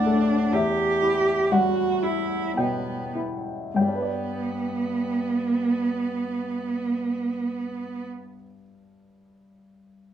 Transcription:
Already playing: grand piano D2 A2 G3 A3 F#5, cello D4
0.06 grand piano A3
0.52 grand piano E2 E5, cello G4
1.02 grand piano E4
1.51 grand piano G3 F#5, cello F#4
2.03 cello E4, grand piano E4
2.57 grand piano B2 G5, cello B3
3.15 grand piano E4
3.74 grand piano G2 G5, cello B3
3.81 grand piano G3
3.88 grand piano D4
3.95 grand piano B4
4.02 grand piano D5

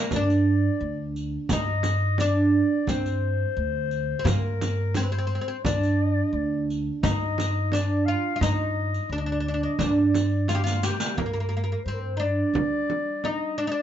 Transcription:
Already playing: clarinet A#4
0.11 upright bass G2, clarinet D5, riq, frame drum
0.16 oud D4
0.30 riq
0.81 upright bass D2
1.16 riq
1.49 upright bass G2, oud D#4, clarinet D#5, riq, frame drum
1.83 riq, frame drum
2.18 oud D4, clarinet D5, riq, frame drum
2.87 upright bass G2, oud C4, clarinet C5, riq, frame drum
3.06 riq
3.57 upright bass D2
3.91 riq
4.19 oud C4
4.24 upright bass G2, oud A#3, clarinet A#4, riq, frame drum
4.61 riq, frame drum
4.95 oud C4, clarinet C5, riq, frame drum
5.03 oud C4
5.12 oud C4
5.18 oud C4
5.27 oud C4
5.35 oud C4
5.41 oud C4
5.48 oud C4
5.64 upright bass G2, oud D4, clarinet D5, riq, frame drum
5.83 riq
6.33 upright bass D2
6.70 riq
7.03 upright bass G2, oud D#4, clarinet D#5, riq, frame drum
7.38 riq, frame drum
7.72 oud D4, clarinet D5, riq, frame drum
8.05 oud F4, clarinet F5
8.36 oud F4
8.41 upright bass G2, oud D#4, clarinet D#5, riq, frame drum
8.94 riq
9.09 upright bass D2, oud D4, clarinet D5
9.18 oud D4, clarinet D#5
9.25 oud D4, clarinet D5
9.32 oud D4
9.40 oud D4
9.48 oud D4
9.54 oud D4
9.63 oud D4, clarinet D#5
9.79 upright bass G2, oud D4, clarinet D5, riq, frame drum
10.14 riq, frame drum
10.48 oud F4, clarinet F5, riq, frame drum
10.55 oud G4
10.64 oud F4, clarinet F5, riq
10.83 oud G4, clarinet G5, riq
11.00 riq
11.17 upright bass G2, oud A#3, clarinet A#4, frame drum
11.26 oud A#3
11.33 oud A#3
11.40 oud A#3
11.49 oud A#3
11.57 oud A#3
11.64 oud A#3
11.68 oud A#3, clarinet A#4
11.84 upright bass G2, oud C4, clarinet C5
11.93 clarinet A#4
12.00 clarinet C5
12.17 oud D4 D#4
12.23 clarinet D5
12.54 upright bass G3, frame drum
12.90 frame drum
13.24 oud D#4, clarinet D#5, frame drum
13.58 oud D4, clarinet D5
13.67 oud D#4
13.72 oud D4, clarinet D5

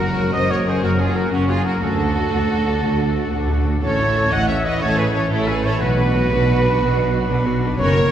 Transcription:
Already playing: tuba F#1, double bass section F#1, cello section F#2, timpani F#2, harp F#2 C#3 C#4 C#5, violin section F#4 A#4, trumpet section A#4
0.00 harp F#3, viola section C#4 A#4
0.08 harp F#4
0.17 viola section A#3 F#4, harp C#5
0.25 harp F#4
0.32 tuba F#1, double bass section F#1, cello section F#2, viola section C#4 A#4, violin section C5 D#5, trumpet section D#5, harp F#5
0.41 harp C#6
0.49 viola section A#3 F#4, violin section A#4 C#5, trumpet section C#5, harp F#5
0.58 harp F#4
0.66 viola section C#4 A#4, violin section G#4 C5, trumpet section C5, harp C#5
0.76 harp F#4
0.83 tuba F#1, double bass section F#1, cello section F#2, harp F#2, viola section A#3 F#4, violin section F#4 A#4, trumpet section A#4
0.91 harp C#3
0.99 harp F#3, viola section C#4 A#4, violin section F4 G#4, trumpet section G#4
1.08 harp F#4
1.16 viola section A#3 F#4, violin section F#4 A#4, trumpet section A#4, harp C#5
1.24 harp F#4
1.32 tuba F#1, double bass section F#1, cello section F#2, violin section C#4 F#4, viola section C#4 A#4, trumpet section F#4, harp F#5
1.41 harp C#6
1.48 viola section A#3 F#4, violin section F4 G#4, trumpet section G#4, harp F#5
1.58 harp F#4
1.65 viola section C#4 A#4, violin section F#4 A#4, trumpet section A#4, harp C#5
1.75 harp F#4
1.82 cello section D2, tuba D2, double bass section D2, harp D3, viola section A3 F#4, violin section F#4 A4, trumpet section A4
1.92 harp D4
1.98 harp A3, viola section D4 A4
2.08 harp F#4
2.16 viola section A3 F#4, harp D5
2.25 harp A4
2.32 cello section D2, tuba D2, double bass section D2, viola section D4 A4, harp F#5
2.41 harp D6
2.49 viola section A3 F#4, harp F#5
2.58 harp A4
2.66 viola section D4 A4, harp D5
2.74 harp F#4
2.82 tuba D2, cello section D2, double bass section D2, harp D3, viola section A3 F#4
2.91 harp D4
3.00 harp A3, viola section D4 A4
3.08 harp F#4
3.16 viola section A3 F#4, harp D5
3.25 harp A4
3.32 cello section D2, tuba D2, double bass section D2, viola section D4 A4, harp F#5
3.41 harp D6
3.49 viola section A3 F#4, harp F#5
3.58 harp A4
3.65 viola section D4 A4, harp D5
3.73 harp F#4
3.81 tuba A1, double bass section A1, cello section A2, harp A2, viola section C#4 A4, violin section A4 C#5, trumpet section C#5
3.90 harp E3
3.98 harp A3, viola section E4 C#5
4.06 harp E4
4.15 viola section C#4 A4, harp E5
4.31 tuba A1, double bass section A1, cello section A2, viola section E4 C#5, violin section D#5 F#5, harp E5, trumpet section F#5
4.40 harp E6
4.48 viola section C#4 A4, violin section C#5 E5, harp E5, trumpet section E5
4.57 harp A4
4.65 viola section E4 C#5, violin section B4 D#5, trumpet section D#5, harp E5
4.72 harp E4
4.80 tuba A1, double bass section A1, harp A2, cello section A2, viola section C#4 A4, violin section A4 C#5, trumpet section C#5
4.89 harp E3
4.96 harp A3, viola section E4 C#5, violin section G#4 B4, trumpet section B4
5.05 harp E4
5.13 viola section C#4 A4, violin section A4 C#5, trumpet section C#5, harp E5
5.22 harp A4
5.31 tuba A1, double bass section A1, cello section A2, viola section E4 C#5, violin section E4 A4, trumpet section A4, harp E5
5.39 harp E6
5.47 viola section C#4 A4, violin section G#4 B4, trumpet section B4, harp E5
5.64 viola section E4 C#5, violin section A4 C#5, trumpet section C#5, harp E5
5.73 harp E4
5.81 tuba B1, double bass section B1, cello section B2, harp B2, viola section B3 F#4, violin section F#4 B4, trumpet section B4
5.89 harp B3
5.98 harp F#3, viola section D4 B4
6.07 harp D4
6.15 viola section B3 F#4, harp B4
6.23 harp F#4
6.30 tuba B1, double bass section B1, cello section B2, viola section D4 B4, harp D5
6.40 harp B5
6.48 viola section B3 F#4, harp D5
6.56 harp F#4
6.63 viola section D4 B4, harp B4
6.73 harp D4
6.80 tuba B1, double bass section B1, cello section B2, harp B2, viola section B3 F#4
6.89 harp B3
6.96 harp F#3, viola section D4 B4
7.05 harp D4
7.13 viola section B3 F#4, harp B4
7.22 harp F#4
7.29 tuba B1, double bass section B1, cello section B2, viola section D4 B4, harp D5
7.38 harp B5
7.46 viola section B3 F#4, harp D5
7.54 harp F#4
7.62 viola section D4 B4, harp B4
7.71 harp D4
7.77 double bass section F#1, tuba F#1, cello section F#2, harp F#2, viola section C#4 F#4, violin section A#4 C#5, trumpet section C#5
7.87 harp C#3
7.95 harp F#3, viola section A#3 A#4
8.04 harp F#4

